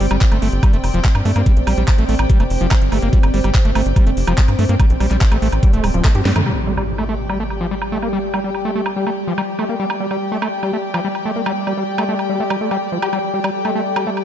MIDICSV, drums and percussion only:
0, 0, Header, 1, 2, 480
1, 0, Start_track
1, 0, Tempo, 416667
1, 1684, Time_signature, 4, 2, 24, 8
1, 16406, End_track
2, 0, Start_track
2, 0, Title_t, "Drums"
2, 4, Note_on_c, 9, 46, 106
2, 120, Note_off_c, 9, 46, 0
2, 125, Note_on_c, 9, 42, 51
2, 125, Note_on_c, 9, 76, 84
2, 240, Note_off_c, 9, 42, 0
2, 240, Note_off_c, 9, 76, 0
2, 245, Note_on_c, 9, 36, 119
2, 245, Note_on_c, 9, 39, 113
2, 245, Note_on_c, 9, 42, 89
2, 360, Note_off_c, 9, 36, 0
2, 360, Note_off_c, 9, 39, 0
2, 360, Note_off_c, 9, 42, 0
2, 365, Note_on_c, 9, 42, 51
2, 365, Note_on_c, 9, 76, 41
2, 480, Note_off_c, 9, 42, 0
2, 480, Note_off_c, 9, 76, 0
2, 485, Note_on_c, 9, 46, 108
2, 600, Note_off_c, 9, 46, 0
2, 604, Note_on_c, 9, 42, 53
2, 720, Note_off_c, 9, 42, 0
2, 725, Note_on_c, 9, 36, 124
2, 725, Note_on_c, 9, 42, 90
2, 725, Note_on_c, 9, 76, 84
2, 840, Note_off_c, 9, 36, 0
2, 840, Note_off_c, 9, 42, 0
2, 840, Note_off_c, 9, 76, 0
2, 845, Note_on_c, 9, 42, 50
2, 960, Note_off_c, 9, 42, 0
2, 964, Note_on_c, 9, 46, 108
2, 964, Note_on_c, 9, 76, 43
2, 1080, Note_off_c, 9, 46, 0
2, 1080, Note_off_c, 9, 76, 0
2, 1084, Note_on_c, 9, 42, 49
2, 1200, Note_off_c, 9, 42, 0
2, 1204, Note_on_c, 9, 39, 116
2, 1204, Note_on_c, 9, 42, 88
2, 1205, Note_on_c, 9, 36, 116
2, 1320, Note_off_c, 9, 36, 0
2, 1320, Note_off_c, 9, 39, 0
2, 1320, Note_off_c, 9, 42, 0
2, 1324, Note_on_c, 9, 42, 49
2, 1324, Note_on_c, 9, 76, 83
2, 1440, Note_off_c, 9, 42, 0
2, 1440, Note_off_c, 9, 76, 0
2, 1444, Note_on_c, 9, 46, 106
2, 1560, Note_off_c, 9, 46, 0
2, 1565, Note_on_c, 9, 42, 52
2, 1565, Note_on_c, 9, 76, 43
2, 1680, Note_off_c, 9, 42, 0
2, 1680, Note_off_c, 9, 76, 0
2, 1684, Note_on_c, 9, 42, 90
2, 1685, Note_on_c, 9, 36, 116
2, 1800, Note_off_c, 9, 36, 0
2, 1800, Note_off_c, 9, 42, 0
2, 1804, Note_on_c, 9, 42, 54
2, 1920, Note_off_c, 9, 42, 0
2, 1924, Note_on_c, 9, 46, 104
2, 1924, Note_on_c, 9, 76, 86
2, 2039, Note_off_c, 9, 46, 0
2, 2039, Note_off_c, 9, 76, 0
2, 2044, Note_on_c, 9, 42, 52
2, 2160, Note_off_c, 9, 42, 0
2, 2164, Note_on_c, 9, 39, 115
2, 2164, Note_on_c, 9, 42, 94
2, 2164, Note_on_c, 9, 76, 42
2, 2165, Note_on_c, 9, 36, 114
2, 2280, Note_off_c, 9, 36, 0
2, 2280, Note_off_c, 9, 39, 0
2, 2280, Note_off_c, 9, 42, 0
2, 2280, Note_off_c, 9, 76, 0
2, 2284, Note_on_c, 9, 42, 54
2, 2399, Note_off_c, 9, 42, 0
2, 2404, Note_on_c, 9, 46, 103
2, 2519, Note_off_c, 9, 46, 0
2, 2524, Note_on_c, 9, 42, 54
2, 2524, Note_on_c, 9, 76, 88
2, 2639, Note_off_c, 9, 42, 0
2, 2639, Note_off_c, 9, 76, 0
2, 2644, Note_on_c, 9, 42, 94
2, 2645, Note_on_c, 9, 36, 116
2, 2759, Note_off_c, 9, 42, 0
2, 2760, Note_off_c, 9, 36, 0
2, 2764, Note_on_c, 9, 42, 52
2, 2764, Note_on_c, 9, 76, 41
2, 2879, Note_off_c, 9, 42, 0
2, 2879, Note_off_c, 9, 76, 0
2, 2884, Note_on_c, 9, 46, 102
2, 2999, Note_off_c, 9, 46, 0
2, 3004, Note_on_c, 9, 42, 52
2, 3119, Note_off_c, 9, 42, 0
2, 3124, Note_on_c, 9, 39, 116
2, 3124, Note_on_c, 9, 42, 93
2, 3124, Note_on_c, 9, 76, 85
2, 3125, Note_on_c, 9, 36, 114
2, 3239, Note_off_c, 9, 39, 0
2, 3239, Note_off_c, 9, 42, 0
2, 3239, Note_off_c, 9, 76, 0
2, 3240, Note_off_c, 9, 36, 0
2, 3244, Note_on_c, 9, 42, 54
2, 3359, Note_off_c, 9, 42, 0
2, 3364, Note_on_c, 9, 46, 100
2, 3364, Note_on_c, 9, 76, 42
2, 3479, Note_off_c, 9, 46, 0
2, 3479, Note_off_c, 9, 76, 0
2, 3484, Note_on_c, 9, 42, 53
2, 3600, Note_off_c, 9, 42, 0
2, 3604, Note_on_c, 9, 36, 115
2, 3604, Note_on_c, 9, 42, 94
2, 3719, Note_off_c, 9, 42, 0
2, 3720, Note_off_c, 9, 36, 0
2, 3724, Note_on_c, 9, 42, 54
2, 3724, Note_on_c, 9, 76, 82
2, 3840, Note_off_c, 9, 42, 0
2, 3840, Note_off_c, 9, 76, 0
2, 3845, Note_on_c, 9, 46, 101
2, 3960, Note_off_c, 9, 46, 0
2, 3964, Note_on_c, 9, 42, 55
2, 3964, Note_on_c, 9, 76, 40
2, 4080, Note_off_c, 9, 42, 0
2, 4080, Note_off_c, 9, 76, 0
2, 4085, Note_on_c, 9, 36, 115
2, 4085, Note_on_c, 9, 39, 117
2, 4085, Note_on_c, 9, 42, 98
2, 4200, Note_off_c, 9, 36, 0
2, 4200, Note_off_c, 9, 39, 0
2, 4200, Note_off_c, 9, 42, 0
2, 4205, Note_on_c, 9, 42, 55
2, 4320, Note_off_c, 9, 42, 0
2, 4324, Note_on_c, 9, 46, 101
2, 4324, Note_on_c, 9, 76, 82
2, 4440, Note_off_c, 9, 46, 0
2, 4440, Note_off_c, 9, 76, 0
2, 4444, Note_on_c, 9, 42, 56
2, 4560, Note_off_c, 9, 42, 0
2, 4564, Note_on_c, 9, 42, 96
2, 4564, Note_on_c, 9, 76, 41
2, 4565, Note_on_c, 9, 36, 114
2, 4680, Note_off_c, 9, 36, 0
2, 4680, Note_off_c, 9, 42, 0
2, 4680, Note_off_c, 9, 76, 0
2, 4684, Note_on_c, 9, 42, 55
2, 4800, Note_off_c, 9, 42, 0
2, 4804, Note_on_c, 9, 46, 100
2, 4920, Note_off_c, 9, 46, 0
2, 4924, Note_on_c, 9, 42, 54
2, 4924, Note_on_c, 9, 76, 81
2, 5040, Note_off_c, 9, 42, 0
2, 5040, Note_off_c, 9, 76, 0
2, 5044, Note_on_c, 9, 39, 119
2, 5044, Note_on_c, 9, 42, 95
2, 5045, Note_on_c, 9, 36, 115
2, 5159, Note_off_c, 9, 39, 0
2, 5159, Note_off_c, 9, 42, 0
2, 5160, Note_off_c, 9, 36, 0
2, 5164, Note_on_c, 9, 42, 53
2, 5164, Note_on_c, 9, 76, 40
2, 5280, Note_off_c, 9, 42, 0
2, 5280, Note_off_c, 9, 76, 0
2, 5284, Note_on_c, 9, 46, 99
2, 5400, Note_off_c, 9, 46, 0
2, 5404, Note_on_c, 9, 42, 55
2, 5520, Note_off_c, 9, 42, 0
2, 5524, Note_on_c, 9, 42, 96
2, 5524, Note_on_c, 9, 76, 78
2, 5525, Note_on_c, 9, 36, 117
2, 5639, Note_off_c, 9, 42, 0
2, 5639, Note_off_c, 9, 76, 0
2, 5640, Note_off_c, 9, 36, 0
2, 5645, Note_on_c, 9, 42, 57
2, 5760, Note_off_c, 9, 42, 0
2, 5764, Note_on_c, 9, 46, 103
2, 5764, Note_on_c, 9, 76, 40
2, 5880, Note_off_c, 9, 46, 0
2, 5880, Note_off_c, 9, 76, 0
2, 5885, Note_on_c, 9, 39, 37
2, 5885, Note_on_c, 9, 42, 57
2, 6000, Note_off_c, 9, 39, 0
2, 6000, Note_off_c, 9, 42, 0
2, 6005, Note_on_c, 9, 36, 116
2, 6005, Note_on_c, 9, 39, 120
2, 6005, Note_on_c, 9, 42, 99
2, 6120, Note_off_c, 9, 36, 0
2, 6120, Note_off_c, 9, 39, 0
2, 6120, Note_off_c, 9, 42, 0
2, 6124, Note_on_c, 9, 42, 57
2, 6124, Note_on_c, 9, 76, 79
2, 6240, Note_off_c, 9, 42, 0
2, 6240, Note_off_c, 9, 76, 0
2, 6244, Note_on_c, 9, 46, 105
2, 6359, Note_off_c, 9, 46, 0
2, 6365, Note_on_c, 9, 42, 57
2, 6365, Note_on_c, 9, 76, 40
2, 6480, Note_off_c, 9, 42, 0
2, 6480, Note_off_c, 9, 76, 0
2, 6485, Note_on_c, 9, 36, 118
2, 6485, Note_on_c, 9, 42, 100
2, 6600, Note_off_c, 9, 36, 0
2, 6600, Note_off_c, 9, 42, 0
2, 6605, Note_on_c, 9, 42, 56
2, 6720, Note_off_c, 9, 42, 0
2, 6724, Note_on_c, 9, 46, 104
2, 6724, Note_on_c, 9, 76, 79
2, 6840, Note_off_c, 9, 46, 0
2, 6840, Note_off_c, 9, 76, 0
2, 6844, Note_on_c, 9, 42, 55
2, 6960, Note_off_c, 9, 42, 0
2, 6964, Note_on_c, 9, 38, 61
2, 6964, Note_on_c, 9, 39, 119
2, 6964, Note_on_c, 9, 42, 98
2, 6964, Note_on_c, 9, 76, 39
2, 6965, Note_on_c, 9, 36, 115
2, 7080, Note_off_c, 9, 36, 0
2, 7080, Note_off_c, 9, 38, 0
2, 7080, Note_off_c, 9, 39, 0
2, 7080, Note_off_c, 9, 42, 0
2, 7080, Note_off_c, 9, 76, 0
2, 7084, Note_on_c, 9, 42, 56
2, 7084, Note_on_c, 9, 48, 62
2, 7200, Note_off_c, 9, 42, 0
2, 7200, Note_off_c, 9, 48, 0
2, 7204, Note_on_c, 9, 38, 86
2, 7204, Note_on_c, 9, 46, 100
2, 7319, Note_off_c, 9, 38, 0
2, 7319, Note_off_c, 9, 46, 0
2, 7324, Note_on_c, 9, 42, 56
2, 7324, Note_on_c, 9, 45, 84
2, 7324, Note_on_c, 9, 76, 78
2, 7439, Note_off_c, 9, 42, 0
2, 7439, Note_off_c, 9, 45, 0
2, 7439, Note_off_c, 9, 76, 0
2, 7444, Note_on_c, 9, 76, 36
2, 7560, Note_off_c, 9, 76, 0
2, 7804, Note_on_c, 9, 76, 73
2, 7920, Note_off_c, 9, 76, 0
2, 8044, Note_on_c, 9, 76, 36
2, 8159, Note_off_c, 9, 76, 0
2, 8404, Note_on_c, 9, 76, 73
2, 8520, Note_off_c, 9, 76, 0
2, 8645, Note_on_c, 9, 76, 36
2, 8760, Note_off_c, 9, 76, 0
2, 9004, Note_on_c, 9, 76, 73
2, 9120, Note_off_c, 9, 76, 0
2, 9244, Note_on_c, 9, 76, 37
2, 9360, Note_off_c, 9, 76, 0
2, 9604, Note_on_c, 9, 76, 74
2, 9719, Note_off_c, 9, 76, 0
2, 9845, Note_on_c, 9, 76, 37
2, 9960, Note_off_c, 9, 76, 0
2, 10205, Note_on_c, 9, 76, 76
2, 10320, Note_off_c, 9, 76, 0
2, 10444, Note_on_c, 9, 76, 36
2, 10560, Note_off_c, 9, 76, 0
2, 10804, Note_on_c, 9, 76, 75
2, 10920, Note_off_c, 9, 76, 0
2, 11045, Note_on_c, 9, 76, 36
2, 11160, Note_off_c, 9, 76, 0
2, 11404, Note_on_c, 9, 76, 77
2, 11520, Note_off_c, 9, 76, 0
2, 11645, Note_on_c, 9, 76, 38
2, 11760, Note_off_c, 9, 76, 0
2, 12005, Note_on_c, 9, 76, 75
2, 12120, Note_off_c, 9, 76, 0
2, 12245, Note_on_c, 9, 76, 38
2, 12360, Note_off_c, 9, 76, 0
2, 12604, Note_on_c, 9, 76, 76
2, 12720, Note_off_c, 9, 76, 0
2, 12844, Note_on_c, 9, 76, 38
2, 12960, Note_off_c, 9, 76, 0
2, 13204, Note_on_c, 9, 76, 76
2, 13319, Note_off_c, 9, 76, 0
2, 13444, Note_on_c, 9, 76, 39
2, 13559, Note_off_c, 9, 76, 0
2, 13804, Note_on_c, 9, 76, 79
2, 13919, Note_off_c, 9, 76, 0
2, 14044, Note_on_c, 9, 76, 41
2, 14159, Note_off_c, 9, 76, 0
2, 14404, Note_on_c, 9, 76, 80
2, 14519, Note_off_c, 9, 76, 0
2, 14644, Note_on_c, 9, 76, 40
2, 14759, Note_off_c, 9, 76, 0
2, 15004, Note_on_c, 9, 76, 81
2, 15119, Note_off_c, 9, 76, 0
2, 15124, Note_on_c, 9, 76, 39
2, 15239, Note_off_c, 9, 76, 0
2, 15484, Note_on_c, 9, 76, 79
2, 15600, Note_off_c, 9, 76, 0
2, 15724, Note_on_c, 9, 76, 40
2, 15839, Note_off_c, 9, 76, 0
2, 16084, Note_on_c, 9, 76, 83
2, 16200, Note_off_c, 9, 76, 0
2, 16324, Note_on_c, 9, 76, 40
2, 16406, Note_off_c, 9, 76, 0
2, 16406, End_track
0, 0, End_of_file